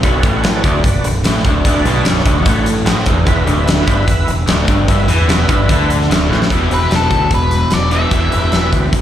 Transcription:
0.03 fingered electric bass B0, overdriven electric guitar B1, tonewheel organ D4 F#4 B4 C#5, kick, closed hi-hat
0.23 fingered electric bass A1, overdriven electric guitar A2, kick, closed hi-hat
0.35 tonewheel organ D4 F#4 B4 C#5
0.44 snare, closed hi-hat
0.54 tonewheel organ D4 F#4 B4 D5
0.64 fingered electric bass D1, overdriven electric guitar D2, kick, closed hi-hat
0.84 fingered electric bass B0, overdriven electric guitar B1, kick, closed hi-hat
1.03 fingered electric bass B0, overdriven electric guitar B1, closed hi-hat
1.23 fingered electric bass A1, overdriven electric guitar A2, snare, closed hi-hat
1.44 fingered electric bass D1, overdriven electric guitar D2, kick, closed hi-hat
1.65 fingered electric bass D1, overdriven electric guitar D2, tonewheel organ D4 F#4 B4 D5, kick, closed hi-hat
1.84 fingered electric bass B1, overdriven electric guitar B2, closed hi-hat
1.95 tonewheel organ D4 F#4 B4 D5
2.04 fingered electric bass B0, overdriven electric guitar B1, snare, closed hi-hat
2.17 tonewheel organ D4 F#4 B4 C#5
2.25 fingered electric bass D1, overdriven electric guitar D2, kick, closed hi-hat
2.45 fingered electric bass A1, overdriven electric guitar A2, kick, closed hi-hat
2.66 closed hi-hat
2.85 fingered electric bass A1, overdriven electric guitar A2, snare, closed hi-hat
3.06 fingered electric bass E1, overdriven electric guitar E2, kick, closed hi-hat
3.27 fingered electric bass E1, overdriven electric guitar E2, tonewheel organ B3 E4 B4 E5, kick, closed hi-hat
3.46 fingered electric bass D1, overdriven electric guitar D2, closed hi-hat
3.58 tonewheel organ B3 E4 B4 E5
3.67 snare, closed hi-hat
3.78 tonewheel organ B3 E4 B4 E5
3.87 fingered electric bass G1, overdriven electric guitar G2, kick, closed hi-hat
4.07 fingered electric bass E1, overdriven electric guitar E2, kick, closed hi-hat
4.27 fingered electric bass E1, overdriven electric guitar E2, closed hi-hat
4.47 fingered electric bass D1, overdriven electric guitar D2, snare, closed hi-hat
4.68 fingered electric bass G1, overdriven electric guitar G2, kick, closed hi-hat
4.88 fingered electric bass G1, overdriven electric guitar G2, tonewheel organ B3 E4 B4 E5, kick, closed hi-hat
5.08 fingered electric bass E2, overdriven electric guitar E3, closed hi-hat
5.19 tonewheel organ B3 E4 B4 E5
5.28 fingered electric bass E1, overdriven electric guitar E2, snare, closed hi-hat
5.38 tonewheel organ B3 E4 B4 E5
5.48 fingered electric bass G1, overdriven electric guitar G2, kick, closed hi-hat
5.69 fingered electric bass D2, overdriven electric guitar D3, kick, closed hi-hat
5.90 closed hi-hat
6.02 snare
6.09 fingered electric bass D1, overdriven electric guitar D2, snare, closed hi-hat
6.30 fingered electric bass A1, overdriven electric guitar A2, snare
6.42 snare
6.50 fingered electric bass E1, overdriven electric guitar E2 B2 E3, tonewheel organ B3 E4 G4 B4, kick, closed hi-hat
6.70 fingered electric bass E1, tonewheel organ B3 E4 G4 B4, lead electric guitar B4, closed hi-hat
6.90 fingered electric bass E1, snare, closed hi-hat
6.95 lead electric guitar A4
7.10 fingered electric bass D2, kick, closed hi-hat
7.31 fingered electric bass E1, lead electric guitar B4, kick, closed hi-hat
7.51 closed hi-hat
7.71 fingered electric bass E1, lead electric guitar D5, snare, closed hi-hat
7.91 overdriven electric guitar E2 B2 E3, lead electric guitar E5, closed hi-hat
8.11 fingered electric bass E1, overdriven electric guitar E2 B2 E3, tonewheel organ B3 E4 G4 B4, kick, closed hi-hat
8.31 fingered electric bass E1, tonewheel organ B3 E4 G4 B4, closed hi-hat
8.52 fingered electric bass E1, snare, closed hi-hat
8.72 fingered electric bass D2, kick, closed hi-hat
8.92 fingered electric bass E1, kick, closed hi-hat

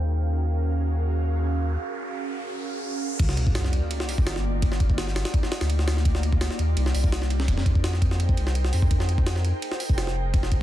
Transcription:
Already playing: sub bass D#2, ambient pad C#4 F#4 G#4 A#4 F5
0.34 riser
2.48 ambient pad C#4 F#4 G#4 A#4 F5
3.19 sub bass C2, kick, crash, ride, sub drop
3.29 snare
3.37 ride
3.47 ambient pad A#3 D#4 F4 G4 D5, kick
3.55 snare, ride
3.64 snare
3.73 ride
3.91 ride
4.00 snare
4.09 open hi-hat
4.18 sub bass G1, kick
4.27 snare, ride
4.36 snare
4.62 kick, ride
4.72 snare
4.80 kick, ride
4.90 ambient pad A#3 D#4 F4 G4 D5, kick
4.98 snare, ride
5.07 snare
5.16 snare, ride
5.25 snare, ride
5.34 kick, ride
5.43 snare
5.52 snare, ride
5.61 sub bass D2, snare, ride
5.70 ride
5.79 snare
5.88 snare, ride
5.97 snare
6.05 kick, ride
6.15 snare
6.23 ride
6.32 ambient pad A#3 D#4 F4 G4 D5, kick
6.41 snare, ride
6.51 snare
6.59 sub bass D#2, ride
6.77 sub bass C2, ride
6.86 snare
6.95 sub bass C2, open hi-hat
7.04 kick
7.12 snare, ride
7.22 snare
7.30 ride
7.40 snare
7.48 sub bass F2, kick, ride
7.58 snare
7.66 kick, ride
7.75 ambient pad D#4 G#4 A#4 C5 G5, kick
7.84 snare, ride
7.93 snare
8.02 kick, ride
8.11 snare
8.20 ride
8.29 kick
8.37 sub bass C2, ride
8.47 snare
8.55 ride
8.65 snare
8.73 sub bass F2, open hi-hat
8.82 kick
8.91 sub bass F2, kick, ride
9.00 snare
9.09 ride
9.18 ambient pad D#4 G#4 A#4 C5 G5, kick
9.27 snare, ride
9.36 snare
9.45 ride
9.62 ride
9.72 snare
9.80 open hi-hat
9.89 sub bass F1, kick
9.98 snare, ride
10.07 snare
10.34 kick, ride
10.43 snare
10.52 kick, ride

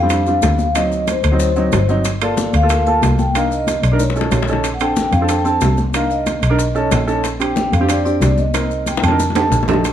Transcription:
Already playing: double bass F2, vibraphone F5
0.02 grand piano G3 C4 D4
0.10 grand piano G3 C4 D4, high bongo, high conga, high timbale, maracas
0.26 grand piano G3 C4 D4, high bongo, high conga, maracas
0.42 double bass D2, high bongo, low bongo, high conga, high timbale, low timbale, maracas
0.59 high conga, maracas
0.75 grand piano F#3 C4 D#4, vibraphone D#5, high bongo, high conga, high timbale, maracas
0.92 high bongo, high conga, maracas
1.07 vibraphone C5, high bongo, high conga, high timbale, low timbale, maracas
1.23 double bass D2, high bongo, high conga, high timbale, maracas
1.31 grand piano F#3 C4 D#4
1.39 high bongo, high conga, maracas
1.56 grand piano F#3 C4 D#4, high bongo, high conga, maracas
1.72 double bass G1, high bongo, low bongo, high conga, high timbale, low timbale, maracas
1.89 grand piano F#3 C4 D#4, high conga, maracas
2.05 high bongo, high conga, high timbale, maracas
2.21 grand piano A#3 F4 A4, vibraphone D5, high bongo, high conga, high timbale, maracas
2.37 high bongo, high conga, low timbale, maracas
2.53 double bass D2, vibraphone F5, high bongo, high timbale, maracas
2.62 grand piano A#3 F4 A4
2.69 grand piano A#3 F4 A4, high bongo, high timbale, maracas
2.86 grand piano A#3 F4 A4, vibraphone A5, high bongo, high conga, maracas
3.02 double bass C2, high bongo, low bongo, high conga, high timbale, low timbale, maracas
3.19 vibraphone G5, high conga, maracas
3.35 grand piano D4 D#4 A#4, vibraphone F5, high bongo, high conga, high timbale, maracas
3.51 vibraphone D#5, high bongo, high conga, maracas
3.67 high bongo, high conga, high timbale, low timbale, maracas
3.82 double bass B1, vibraphone D5, high bongo, high conga, high timbale, maracas
3.92 grand piano D4 D#4 A#4
3.99 vibraphone C#5, high bongo, high conga, maracas
4.10 high bongo
4.15 grand piano C#4 D#4 A4, high conga, maracas
4.21 low bongo
4.31 double bass A#1, low bongo, high timbale, low timbale, maracas
4.42 low bongo
4.48 grand piano C#4 D#4 A4, high conga, maracas
4.53 low bongo
4.64 high bongo, high conga, high timbale, maracas
4.74 vibraphone F#5
4.80 grand piano C4 D4 A4, vibraphone G5, high bongo, high conga, high timbale, maracas
4.96 high bongo, high conga, low timbale, maracas
5.12 double bass F2, vibraphone F5, high bongo, high timbale, maracas
5.21 grand piano C4 D4 A4
5.29 grand piano C4 D4 A4, vibraphone G5, high bongo, high conga, high timbale, maracas
5.44 grand piano C4 D4 A4, vibraphone A5, high bongo, high conga, maracas
5.61 double bass C2, high bongo, low bongo, high conga, high timbale, low timbale, maracas
5.77 high conga, maracas
5.94 grand piano D4 D#4 A#4, vibraphone F5, high bongo, high conga, high timbale, maracas
6.10 vibraphone D#5, high bongo, high conga, maracas
6.26 high bongo, high conga, high timbale, low timbale, maracas
6.42 double bass B1, high bongo, high conga, high timbale, maracas
6.50 grand piano D4 D#4 A#4
6.59 high bongo, high conga, maracas
6.75 grand piano C#4 D#4 A4, high bongo, high conga, maracas
6.91 double bass A#1, high bongo, low bongo, high conga, high timbale, low timbale, maracas
7.07 grand piano C#4 D#4 A4, high conga, maracas
7.24 high bongo, high conga, high timbale, maracas
7.40 grand piano C4 D4 G4, vibraphone G5, high bongo, high conga, high timbale, maracas
7.56 high bongo, high conga, low timbale, maracas
7.72 double bass F2, vibraphone F5, high bongo, high timbale, maracas
7.80 grand piano C4 D4 G4
7.88 grand piano C4 D4 G4, vibraphone D5, high bongo, high timbale, maracas
8.05 grand piano C4 D4 G4, vibraphone D5, high bongo, high conga, maracas
8.21 double bass C2, high bongo, low bongo, high conga, high timbale, low timbale, maracas
8.38 vibraphone D#5, high conga, maracas
8.54 grand piano C4 D#4 A#4, high bongo, high conga, high timbale, maracas
8.70 high conga, maracas
8.86 vibraphone G5, high conga, high timbale, low timbale, maracas
8.97 high bongo
9.02 double bass F2, vibraphone A5, high conga, high timbale, maracas
9.08 grand piano D4 D#4 A#4, low bongo
9.19 low bongo, high conga, maracas
9.30 low bongo
9.35 grand piano D4 D#4 G4 A4, high conga, high timbale, maracas
9.51 double bass A#1, low bongo, maracas
9.63 low bongo
9.68 grand piano D4 D#4 G4 A4, low conga, low timbale, maracas
9.73 low bongo
9.84 high bongo, high conga, high timbale, maracas

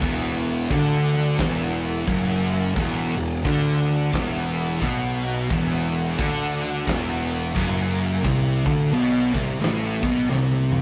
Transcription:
0.02 picked electric bass E1, distorted electric guitar E2, kick, crash
0.43 crash
0.70 picked electric bass D2, distorted electric guitar D3, kick, crash
1.12 snare, crash
1.38 picked electric bass E1, distorted electric guitar E2, kick, snare, crash
1.80 crash
2.07 picked electric bass F#1, distorted electric guitar F#2, kick, crash
2.49 crash
2.75 picked electric bass E1, distorted electric guitar E2, kick, crash
3.16 picked electric bass E1, distorted electric guitar E2, crash
3.44 picked electric bass D2, distorted electric guitar D3, kick, crash
3.86 snare, crash
4.12 picked electric bass E1, distorted electric guitar E2, kick, snare, crash
4.54 crash
4.81 picked electric bass B1, distorted electric guitar B2, kick, crash
5.23 crash
5.50 picked electric bass E1, distorted electric guitar E2, kick, crash
5.92 crash
6.18 picked electric bass D2, distorted electric guitar D3, kick, crash
6.60 snare, crash
6.87 picked electric bass E1, distorted electric guitar E2, kick, snare, crash
7.29 crash
7.54 picked electric bass F#1, distorted electric guitar F#2, kick, crash
7.97 crash
8.24 picked electric bass C2, distorted electric guitar C3, kick, crash
8.65 picked electric bass D2, distorted electric guitar D3, kick, crash
8.92 picked electric bass B1, distorted electric guitar B2, crash
9.34 picked electric bass C2, distorted electric guitar C3, kick, snare, crash
9.61 picked electric bass A1, distorted electric guitar A2, snare, crash
10.02 picked electric bass B1, distorted electric guitar B2, kick, crash
10.30 picked electric bass C2, distorted electric guitar C3, snare
10.51 high tom
10.71 mid tom

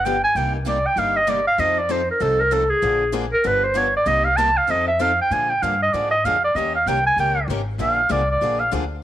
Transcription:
Already playing: upright bass G1
0.05 steel-string acoustic guitar D3 F3 B3 D4 G4, clarinet G5
0.24 clarinet G#5
0.35 upright bass C2, steel-string acoustic guitar C3 G3 A#3 D#4 G4, clarinet G5
0.56 clarinet A#4
0.66 steel-string acoustic guitar C3 G3 A#3 D#4 G4, clarinet D5
0.87 clarinet G5
0.96 upright bass G1, steel-string acoustic guitar C3 G3 A#3 D#4 G4, clarinet F5
1.17 clarinet D#5
1.27 steel-string acoustic guitar C3 G3 A#3 D#4 G4, clarinet D5
1.47 clarinet F5
1.58 upright bass F2, steel-string acoustic guitar F3 C4 D#4 A4, clarinet D#5
1.79 clarinet D5
1.89 steel-string acoustic guitar F3 C4 D#4 A4, clarinet C5
2.11 clarinet A#4
2.20 upright bass C2, steel-string acoustic guitar F3 C4 D#4 A4, clarinet A4
2.41 clarinet A#4
2.51 steel-string acoustic guitar F3 C4 D#4 A4, clarinet A4
2.70 clarinet G#4
2.82 upright bass A#1, steel-string acoustic guitar D3 F3 A#3 D4 G#4
3.13 steel-string acoustic guitar D3 F3 A#3 D4 G#4
3.33 clarinet A#4
3.44 upright bass G1, steel-string acoustic guitar D3 F3 B3 D4 G4, clarinet B4
3.64 clarinet C5
3.74 steel-string acoustic guitar D3 F3 B3 D4 G4, clarinet C#5
3.97 clarinet D5
4.06 upright bass C2, steel-string acoustic guitar C3 G3 A#3 D#4 G4, clarinet D#5
4.25 clarinet F5
4.37 steel-string acoustic guitar C3 G3 A#3 D#4 G4, clarinet A5
4.57 clarinet F5
4.68 upright bass F2, steel-string acoustic guitar F3 C4 D#4 A4, clarinet D#5
4.88 clarinet E5
4.99 steel-string acoustic guitar F3 C4 D#4 A4, clarinet F5
5.22 clarinet G5
5.31 upright bass A#2, steel-string acoustic guitar D3 F3 A#3 D4 G#4, clarinet G#5
5.50 clarinet G5
5.62 upright bass G2, steel-string acoustic guitar D3 F3 A#3 D4 G#4, clarinet F5
5.83 clarinet D#5
5.93 upright bass G#2, steel-string acoustic guitar D3 F3 A#3 D4 G#4, clarinet D5
6.11 clarinet D#5
6.24 upright bass F2, steel-string acoustic guitar D3 F3 A#3 D4 G#4, clarinet F5
6.44 clarinet D5
6.55 upright bass D#2, steel-string acoustic guitar D#3 A#3 C#4 G4 A#4, clarinet D#5
6.75 clarinet F5
6.86 upright bass C2, steel-string acoustic guitar D#3 A#3 C#4 G4 A#4, clarinet G5
7.07 clarinet G#5
7.16 upright bass C#2, steel-string acoustic guitar D#3 A#3 C#4 G4 A#4, clarinet G5
7.48 upright bass G#1, steel-string acoustic guitar D#3 A#3 C#4 G4 A#4
7.78 upright bass A#1, steel-string acoustic guitar D3 F3 A#3 D4 G#4, clarinet F5
8.09 upright bass C2, steel-string acoustic guitar D3 F3 A#3 D4 G#4, clarinet D5
8.31 clarinet D5
8.41 upright bass A#1, steel-string acoustic guitar D3 F3 A#3 D4 G#4
8.60 clarinet F5
8.71 upright bass D2, steel-string acoustic guitar D3 F3 A#3 D4 G#4

